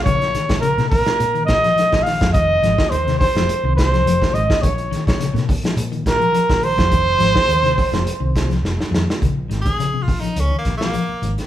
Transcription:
<<
  \new Staff \with { instrumentName = "Trumpet" } { \time 4/4 \key bes \minor \tempo 4 = 105 des''4 bes'8 bes'4 ees''4 f''8 | ees''4 c''8 c''4 c''4 ees''8 | des''8. des''8. r4 bes'4 c''8~ | c''2. r4 |
r1 | }
  \new Staff \with { instrumentName = "Tenor saxophone" } { \time 4/4 \key bes \minor r1 | r1 | r1 | r1 |
\tuplet 3/2 { r4 aes'8~ aes'8 f'8 ees'8 des'8 bes8 bes8~ } bes8 r8 | }
  \new Staff \with { instrumentName = "Clean electric guitar" } { \clef bass \time 4/4 \key bes \minor des8 ees8 des16 c8 r8 ees8 f16 f8 ees8 | ees8 f8 ees16 c8 f8 ees8 f16 f8 ees8 | r8 ees8 des16 c8 f8 ees8 f16 f8 ees8 | ees8 f8 ees16 c8 f8 ees8 f16 r8 ees8 |
des8 ees8 des16 c8 f8 ees8 f16 f8 ees8 | }
  \new Staff \with { instrumentName = "Fingered electric bass" } { \clef bass \time 4/4 \key bes \minor bes,,8 r16 bes,,8 bes,8 r16 bes,8 bes,16 r8 bes,,8 f,16 | f,,8 aes,,16 r16 ees,8 r16 f,,16 r16 c,8. f,,16 r16 aes,,16 r16 | bes,,8 r16 bes,,8 bes,8 r16 bes,8 bes,16 r8 bes,,8 f,16 | f,,8 aes,,16 r16 ees,8 r16 f,,16 r16 c,8. f,,16 r16 f,16 r16 |
bes,,8 aes,,16 bes,,8. bes,,16 r16 des,16 r16 bes,,8 r8 aes,,16 r16 | }
  \new DrumStaff \with { instrumentName = "Drums" } \drummode { \time 4/4 <hh bd>16 <hh sn>16 <hh sn>16 <hh bd sn>16 hh16 <hh sn>16 <hho bd>16 <hh sn>16 hh16 hh16 <hh bd sn>16 <hh sn>16 <hh sn>16 <hh bd sn>16 <hho sn>16 <hh bd sn>16 | <hh bd>8 <hh sn>16 <bd sn>16 hh16 <hh sn>16 <hho bd sn>16 <hh sn>16 hh8 <hh bd sn>16 <hh sn>16 hh16 <bd sn>16 hh16 <bd sn>16 | <hh bd>16 hh16 <hh sn>16 <hh bd sn>16 <hh sn>16 <hh sn>16 <hho bd>16 <hh sn>16 hh16 hh16 <hh bd sn>16 hh16 hh16 <hh bd sn>16 hho16 <hh bd sn>16 | <hh bd>8 <hh sn>16 <bd sn>16 hh16 <hh sn>16 <hho bd>16 <hh sn>16 hh8 <hh bd sn>16 <hh sn>16 sn16 sn16 sn16 sn16 |
<hh bd>8 <hh sn>16 <hh bd>16 hh8 <hho bd>16 hh16 hh8 <hh bd sn>16 sn16 hh8 hh16 <hh sn>16 | }
>>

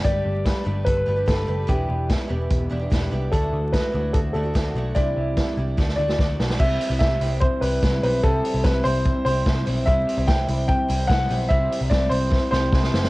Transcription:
<<
  \new Staff \with { instrumentName = "Upright piano" } { \time 4/4 \key c \lydian \tempo 4 = 147 d''4. r8 b'4 a'4 | g'4 r2. | a'4 b'4 a'8 a'4. | d''2~ d''8 d''4. |
e''4 e''4 c''8 b'4 b'8 | a'4 b'8 c''4 c''4 r8 | e''4 g''4 g''4 fis''4 | e''4 d''8 c''4 c''4. | }
  \new Staff \with { instrumentName = "Clean electric guitar" } { \time 4/4 \key c \lydian g8 d'8 b'8 d'8 a'16 b'16 g'8 b'8 g'8 | e8 b8 g'8 b8 g'8 d'8 g'8 d'8 | d8 a8 fis'8 a8 fis'8 d'8 fis'8 d'8 | c8 g8 e'8 g8 d8 d'8 fis'8 d'8 |
<c e'>8 g8 c'8 e'8 c'8 g8 e'8 c'8 | <c e'>8 g8 c'8 e'8 c'8 g8 e'8 c'8 | <c e'>8 g8 c'8 e'8 c'8 g8 e'8 c'8 | <c e'>8 g8 c'8 e'8 c'8 g8 e'8 c'8 | }
  \new Staff \with { instrumentName = "Twelve-string acoustic guitar" } { \time 4/4 \key c \lydian <g a d' g' b'>4. <a d' g' b'>4 <a d' g' b'>16 <d' g' b'>16 <a d' g' b'>8 <a d' g' b'>8 | <e b d' g'>4. <e b d' g'>4 <e b d' g'>16 <b d' g'>16 <e b d' g'>8 <e b d' g'>8 | <d e a d' fis'>4. <e a d' fis'>4 <e a d' fis'>16 <a d' fis'>16 <e a d' fis'>8 <e a d' fis'>8 | <c e g d' e'>4. <e g d' e'>8 <d a d' fis'>8 <d a d' fis'>16 <a d' fis'>16 <d a d' fis'>8 <d a d' fis'>8 |
<c g c' e'>8. <g c' e'>8. <c g c' e'>4 <c g c' e'>4 <c g c' e'>8 | <c g c' e'>8. <g c' e'>8. <c g c' e'>4 <c g c' e'>4 <c g c' e'>8 | <c g c' e'>8. <g c' e'>8. <c g c' e'>4 <c g c' e'>4 <c g c' e'>8 | <c g c' e'>8. <g c' e'>8. <c g c' e'>4 <c g c' e'>4 <c g c' e'>8 | }
  \new Staff \with { instrumentName = "Picked electric bass" } { \clef bass \time 4/4 \key c \lydian g,,8 g,,8. r16 g,,8 g,,8 g,,8 g,,8 fis,,8 | e,,8 e,,8. r16 e,,8 e,,8 e,,8 e,,8 c,8 | d,8 d,8. r16 d,8 d,8 d,8 d,8 b,,8 | c,8 c,8. r16 c,8 d,8 d,8 d,8 b,,8 |
c,8 r16 c,16 c,8 c,8. r16 c,8 c,8 b,,8 | c,8 r16 c,16 c,8 c,8. r16 c,8 c,8 b,,8 | c,8 r16 c,16 r8 c,8. r16 c,8 c,8 b,,8 | c,8 r16 c,16 c,8 c,8. r16 c,8 c,8 fis,,8 | }
  \new DrumStaff \with { instrumentName = "Drums" } \drummode { \time 4/4 <hh bd>4 <hh bd sn>4 <hh bd>4 <hh bd sn>4 | <hh bd>4 <hh bd sn>4 <hh bd>4 <hh bd sn>4 | <hh bd>4 <hh bd sn>4 <hh bd>4 <hh bd sn>4 | <hh bd>4 <hh bd sn>4 <bd sn>16 sn8 sn16 <bd sn>8 sn16 sn16 |
<cymc bd>8 hho8 <hh bd sn>8 hho8 <hh bd>8 hho8 <hh bd sn>8 hho8 | <hh bd>8 hho8 <hh bd sn>8 hho8 <hh bd>8 hho8 <hh bd sn>8 hho8 | <hh bd>8 hho8 <hh bd sn>8 hho8 <hh bd>8 hho8 <hh bd sn>8 hho8 | <hh bd>8 hho8 <hh bd sn>8 hho8 <bd sn>8 sn8 <bd sn>16 sn16 sn16 sn16 | }
>>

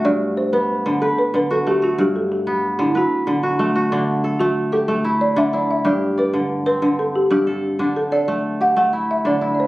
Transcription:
<<
  \new Staff \with { instrumentName = "Marimba" } { \time 12/8 \key d \mixolydian \tempo 4. = 124 d''4 c''8 b'4. a'8 b'8 b'8 a'8 g'8 fis'8 | g'8 a'8 g'4. e'8 fis'2 r4 | r4. fis'4 a'4 r8 d''8 e''8 d''8 e''8 | d''4 b'4. b'4 a'8 g'8 g'4~ g'32 r16. |
r8 a'8 d''4. fis''8 fis''4 e''8 d''8.~ d''32 d''32 c''8 | }
  \new Staff \with { instrumentName = "Kora" } { \time 12/8 \key d \mixolydian fis'8 r2 r8 b'4. fis'4 fis'8~ | fis'8 r2 r8 b'4. fis'4 fis'8 | d'4 a'4. g'4 e'4 d'8 e'4 | g'4 d''4. c'4. r8 g'8 a'4 |
d'4 a'4. g'4 e'4 d'8 e'4 | }
  \new Staff \with { instrumentName = "Kora" } { \clef bass \time 12/8 \key d \mixolydian g,4 r8 b4 d8 r4 d4 a4 | g,4 r8 b4 d8 r4 d4 a4 | d4 r8 a4 r8 a4 r8 d4 r8 | g,4 r8 d4 r8 d4 r8 g,4 r8 |
d4 r8 a4 r8 a4 r8 d4 r8 | }
>>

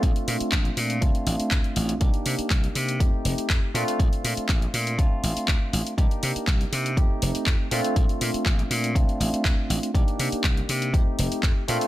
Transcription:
<<
  \new Staff \with { instrumentName = "Tine electric piano" } { \time 4/4 \key c \dorian \tempo 4 = 121 <a c' d' f'>2 <a c' d' f'>2 | <bes d' ees' g'>2 <a c' ees' g'>4. <a c' d' f'>8~ | <a c' d' f'>2 <a c' d' f'>2 | <bes d' ees' g'>2 <a c' ees' g'>4. <a c' d' f'>8~ |
<a c' d' f'>2 <a c' d' f'>2 | <bes d' ees' g'>2 <a c' ees' g'>4. <a c' d' f'>8 | }
  \new Staff \with { instrumentName = "Slap bass" } { \clef bass \time 4/4 \key c \dorian bes,,8 bes,8 bes,,8 bes,8 d,8 a,,8 d,8 a,,8 | c,8 c8 c,8 c8 f,8 f,,8 f,8 bes,8 | bes,,8 bes,8 bes,,8 bes,8 d,8 a,,8 d,8 a,,8 | c,8 c8 c,8 c8 f,8 f,,8 f,8 bes,8 |
bes,,8 bes,8 bes,,8 bes,8 d,8 a,,8 d,8 a,,8 | c,8 c8 c,8 c8 f,8 f,,8 f,8 bes,8 | }
  \new DrumStaff \with { instrumentName = "Drums" } \drummode { \time 4/4 <hh bd>16 hh16 hho16 hh16 <hc hh bd>16 hh16 hho16 hh16 <hh bd>16 hh16 hho16 hh16 <hc hh bd>16 hh16 hho16 hh16 | <hh bd>16 hh16 hho16 hh16 <hc hh bd>16 hh16 hho16 hh16 <hh bd>8 hho16 hh16 <hc hh bd>8 hho16 hh16 | <hh bd>16 hh16 hho16 hh16 <hc hh bd>16 hh16 hho16 hh16 <hh bd>8 hho16 hh16 <hc hh bd>8 hho16 hh16 | <hh bd>16 hh16 hho16 hh16 <hc hh bd>16 hh16 hho16 hh16 <hh bd>8 hho16 hh16 <hc hh bd>8 hho16 hh16 |
<hh bd>16 hh16 hho16 hh16 <hc hh bd>16 hh16 hho16 hh16 <hh bd>16 hh16 hho16 hh16 <hc hh bd>8 hho16 hh16 | <hh bd>16 hh16 hho16 hh16 <hc hh bd>16 hh16 hho16 hh16 <hh bd>8 hho16 hh16 <hc hh bd>8 hho16 hh16 | }
>>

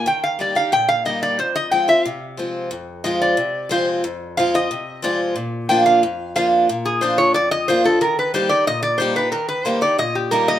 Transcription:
<<
  \new Staff \with { instrumentName = "Resonator guitar played with a steel bar" } { \time 4/4 \key f \dorian \tempo 4 = 181 g''8 f''8 d''8 f''8 g''8 f''8 ees''8 d''8 | c''8 ees''8 g''8 e''8 f''4 r4 | r4 ees''8 d''4. c''8 r8 | r4 f''8 ees''4. d''8 r8 |
r4 g''8 f''4. f''8 r8 | r8 aes'8 c''8 des''8 d''8 ees''8 c''8 a'8 | bes'8 b'8 c''8 d''8 ees''8 d''8 c''8 b'8 | bes'8 b'8 c''8 d''8 ees''8 g'8 bes'8 ees''8 | }
  \new Staff \with { instrumentName = "Steel-string acoustic guitar" } { \time 4/4 \key f \dorian << { r4 <g bes ees' g'>8 <ees' g'>8 r4 <g bes ees' g'>4 | r4 <f aes c' f'>8 <c' f'>8 r4 <f aes c' f'>4 | r4 <f aes c' f'>4 r4 <f aes c' f'>4 | r4 <f aes c' f'>8 <c' f'>8 r4 <f aes c' f'>4 |
r4 <f bes d' f'>4 r4 <f bes d' f'>4 | r4 <f bes d' f'>8 <d' f'>8 r4 <f bes d' f'>8 <d' f'>8 | r4 <g bes ees' g'>8 <ees' g'>8 r4 <g bes ees' g'>8 <ees' g'>8 | r4 <g bes ees' g'>8 <ees' g'>8 r4 <g bes ees' g'>4 | } \\ { ees2 bes,2 | f,2 c2 | f,2 c2 | f,2 c2 |
bes,2 f,2 | bes,2 f,2 | ees2 bes,2 | ees2 bes,2 | } >> }
>>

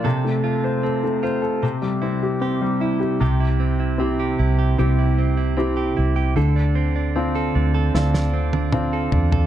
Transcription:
<<
  \new Staff \with { instrumentName = "Clean electric guitar" } { \time 4/4 \key c \mixolydian \tempo 4 = 76 <c a'>8 f'8 c'8 f'8 c8 e'8 g'8 e'8 | <c g'>16 e'16 c'16 e'16 c'16 g'16 e'16 g'16 <c g'>16 e'16 c'16 e'16 c'16 g'16 e'16 g'16 | <d a'>16 d'16 c'16 d'16 c'16 a'16 d'16 a'16 <d a'>16 d'16 c'16 d'16 c'16 a'16 d'16 a'16 | }
  \new Staff \with { instrumentName = "Grand piano" } { \time 4/4 \key c \mixolydian c16 a16 a'16 c''16 a'16 a16 c''16 a'16 c16 g16 c'16 g'16 c'16 g16 e'16 g'16 | c4 <c' e' g'>4 <c' e' g'>4 <c' e' g'>4 | d4 <c' d' f'>4 <c' d' f'>4 <c' d' f'>4 | }
  \new Staff \with { instrumentName = "Fingered electric bass" } { \clef bass \time 4/4 \key c \mixolydian r1 | c,4. c,8 c,4. c,8 | d,4. d,8 d,4. e,8 | }
  \new DrumStaff \with { instrumentName = "Drums" } \drummode { \time 4/4 r4 r4 r4 r4 | r4 r4 r4 r4 | r4 r4 sn16 sn8 tommh16 toml8 tomfh16 tomfh16 | }
>>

